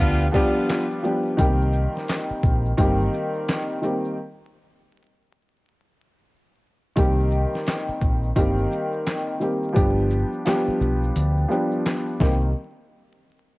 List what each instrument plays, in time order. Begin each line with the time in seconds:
Already playing: upright piano F3 G3 B3 D4 G4
0.00 fingered electric bass D2, horn section B3 D4 F4
0.21 shaker
0.32 upright piano F3 G3 B3 D4 G4, horn section B3 D4 F4, kick, shaker
0.55 shaker
0.69 snare, clap, closed hi-hat, shaker
0.91 shaker
1.03 upright piano F3 G3 B3 D4 G4, shaker
1.26 shaker
1.37 fingered electric bass C2, upright piano D#3 G3 A#3 C4 G4, kick, closed hi-hat, shaker
1.61 shaker
1.73 shaker
1.95 snare, shaker
2.08 snare, clap, closed hi-hat, shaker
2.29 muted fingered electric bass stroke, shaker
2.43 fingered electric bass A#1, kick, shaker
2.66 shaker
2.77 fingered electric bass G1, upright piano D#3 G3 A#3 C4 G4, kick, closed hi-hat, shaker
3.00 shaker
3.13 shaker
3.34 shaker
3.48 snare, clap, closed hi-hat, shaker
3.70 shaker
3.81 upright piano D#3 G3 A#3 C4 G4, shaker
4.05 shaker
6.96 fingered electric bass C2, upright piano D#3 G3 A#3 C4 G4, kick, closed hi-hat, shaker
7.19 shaker
7.31 shaker
7.53 snare, shaker
7.67 snare, clap, closed hi-hat, shaker
7.88 muted fingered electric bass stroke, shaker
8.01 fingered electric bass A#1, kick, shaker
8.24 shaker
8.36 fingered electric bass G1, upright piano D#3 G3 A#3 C4 G4, kick, closed hi-hat, shaker
8.58 shaker
8.71 shaker
8.92 shaker
9.06 snare, clap, closed hi-hat, shaker
9.28 shaker
9.40 upright piano D#3 G3 A#3 C4 G4, shaker
9.63 shaker
9.73 fingered electric bass G1, upright piano F3 G3 B3 D4 G4, kick, closed hi-hat, shaker
9.98 shaker
10.10 shaker
10.33 shaker
10.45 upright piano F3 G3 B3 D4 G4, snare, clap, closed hi-hat, shaker
10.67 muted fingered electric bass stroke, shaker
10.81 fingered electric bass B1, shaker
11.03 shaker
11.16 fingered electric bass D2, closed hi-hat, shaker
11.38 shaker
11.48 upright piano F3 G3 B3 D4 G4, shaker
11.71 shaker
11.86 snare, clap, closed hi-hat, shaker
12.07 shaker
12.20 fingered electric bass C2, upright piano D#3 G3 A#3 C4 G4, kick, snare, shaker